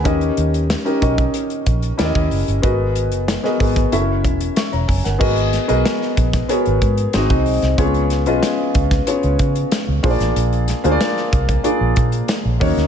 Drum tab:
CC |----------------|----------------|x---------------|----------------|
HH |xxxxxxxxxxxxxxox|x-xxx-oxx-xxxxox|-xxxx-xxxxxxxxox|xxxxx-xxxxxxx-ox|
SD |----o-------o---|----oo------o--o|--o-oo-o----o--o|--o-o--o----o--o|
BD |o-----oo--o--o--|o-----oo--o---o-|o-----oo--o--o--|o-----oo--o---o-|

CC |----------------|
HH |xxxxx-xxx-xxx-ox|
SD |--o-oo------o--o|
BD |------oo--o---o-|